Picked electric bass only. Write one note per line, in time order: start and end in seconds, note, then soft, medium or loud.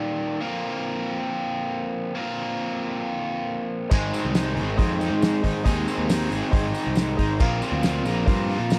3.92 4.10 G#1 loud
4.25 4.59 C2 loud
4.57 4.76 G#1 medium
4.79 5.07 F2 medium
5.10 5.39 G#2 medium
5.44 5.54 G#1 loud
5.66 5.85 D#2 medium
5.98 6.27 D#2 medium
6.31 6.41 G#1 medium
6.53 6.72 G#1 medium
6.87 7.15 C2 loud
7.19 7.41 G#1 loud
7.41 7.60 A#1 loud
7.72 8.05 D2 loud
8.05 8.25 A#1 medium
8.27 8.56 G2 medium
8.60 8.79 A#2 medium